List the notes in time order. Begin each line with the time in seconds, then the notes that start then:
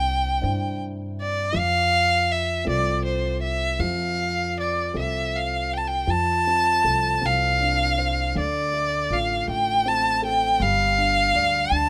Already playing: C2 C3 D4 E4 C5 G5
0.41 G2 D4 E4 C5
1.22 D5
1.53 F2 F3
1.58 F5
2.31 E5
2.65 C2 C4 F4 A4
2.69 D5
3.05 C5
3.42 E5
3.79 F2 F3 F5
4.60 D5
4.94 C2 C4 F4 A4
4.98 E5
5.36 F5
5.74 G5 A5
5.88 G5
6.07 F2 F3 A5
6.47 C4
6.84 C2 A4
7.21 C2 C4
7.26 F5
7.61 D4
7.98 C5
8.35 D2 D3 D5
8.73 A3
9.10 A1 F4 F5
9.47 A1 A3 G5
9.86 C4 A5
10.22 A4 G5
10.60 G1 G3 F5
10.98 D4
11.34 D2 D5
11.71 D2 D4 A5